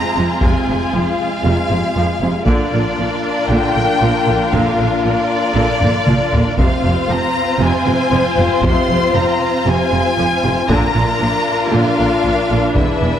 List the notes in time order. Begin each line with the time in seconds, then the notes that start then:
Already playing: G#3 C4 F4 G#4 A#5
0.16 F1 F2 C3
0.42 F1 F2 C3 G#5, taiko
0.68 F1 F2 C3
0.94 F1 F2 F3 F5
1.45 F1 F2 C3
1.69 F1 F2 C3
1.96 F1 F2 F3
2.21 F1 F2 C3
2.45 A#1 A#2 D3 A#3 D4 F4 A#4 D5, taiko
2.72 A#1 A#2 D3
2.97 A#1 A#2 F3
3.48 A#1 A#2 D3 G5
3.75 A#1 A#2 D3
4.01 A#1 A#2 F3
4.27 A#1 A#2 D3
4.52 A#1 A#2 D3 F5, taiko
4.78 A#1 A#2 D3
5.03 A#1 A#2 F3 D5
5.54 A#1 A#2 D3
5.80 A#1 A#2 D3, taiko low-mid
6.06 A#1 A#2 F3, taiko mid
6.33 A#1 A#2 D3, taiko low
6.58 F1 F2 C3 C4 F4 C5 F5, taiko
6.83 F1 F2 C3
7.08 F1 F2 F3 A#5
7.59 F1 F2 C3 G#5
7.85 F1 F2 C3
8.11 F1 F2 F3
8.36 F1 F2 C3
8.62 F1 F2 C3 C6, taiko
8.88 F1 F2 C3
9.14 F1 F2 F3 A#5
9.66 F1 F2 C3 G#5
9.92 F1 F2 C3
10.18 F1 F2 F3
10.43 F1 F2 C3
10.67 A#1 A#2 D3 D4 F4 A#4 A#5, taiko
10.95 A#1 A#2 D3
11.20 A#1 A#2 F3
11.71 A#1 A#2 D3 F5
11.97 A#1 A#2 D3
12.24 A#1 A#2 F3
12.50 A#1 A#2 D3
12.73 E1 E2 D3 E4 G#4 B4 E5, taiko
13.02 E1 E2 E3